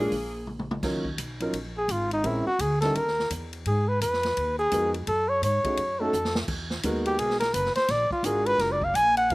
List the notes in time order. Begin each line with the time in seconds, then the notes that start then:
Already playing: E3 A#3 C#4 G#4
0.00 G#3 A#3 D4 F4 G#4
0.12 A#1, open hi-hat
0.47 mid tom
0.59 mid tom
0.71 mid tom
0.83 D#2 F#3 C#4 D#4 F4 A#4, kick, snare, crash
1.05 kick
1.18 B1, hi-hat pedal, ride
1.40 F#3 C#4 D#4 F4 A#4, ride
1.53 A#1, ride
1.78 G#4
1.88 G#1 F4, hi-hat pedal, ride
2.11 D#4, ride
2.24 A#1 G#3 C4 C#4 E4 A#4, ride
2.46 F#4, muted upright bass stroke
2.59 D2 G#4, hi-hat pedal, ride
2.81 G3 C#4 D#4 E4 A4 A#4, snare, ride
2.95 D#2 A#4, ride
3.08 snare
3.19 snare
3.30 E2, hi-hat pedal, ride
3.53 ride
3.65 G#2 G#4, ride
3.88 B4
4.01 F2 B4, hi-hat pedal, ride
4.13 snare
4.23 snare, ride
4.37 D#2, ride
4.59 G#4
4.71 F2 G#3 B3 D#4 F#4 A#4, hi-hat pedal, ride
4.94 ride
5.07 F#2 A4, ride
5.29 C#5
5.42 G#2 C#5, hi-hat pedal, ride
5.64 A3 C#4 D#4 F#4 G#4, muted upright bass stroke, kick, ride
5.77 F#2, ride
6.00 A3 C#4 D#4 F#4 A4
6.13 F2, hi-hat pedal
6.25 snare
6.35 snare
6.48 E2, kick, crash
6.70 snare
6.83 D#2 G#3 B3 D#4 F#4 A#4, hi-hat pedal, ride
7.06 G4, ride
7.19 B1 G#4, ride
7.30 snare
7.40 A#4, snare, ride
7.54 F#1 B4, hi-hat pedal, ride
7.66 snare
7.75 C5, snare, ride
7.88 A#1 D5, snare, ride
8.11 F4, muted upright bass stroke, kick
8.23 G#1 G#3 D4 F4 F#4 G#4 A#4, hi-hat pedal, ride
8.46 B4, ride
8.58 F#1 A#4, snare, ride
8.72 D5
8.82 F5, kick
8.94 A#1 G#5, hi-hat pedal, ride
9.17 F#5, ride
9.30 D#2 F#3 C#4 D#4 F4, ride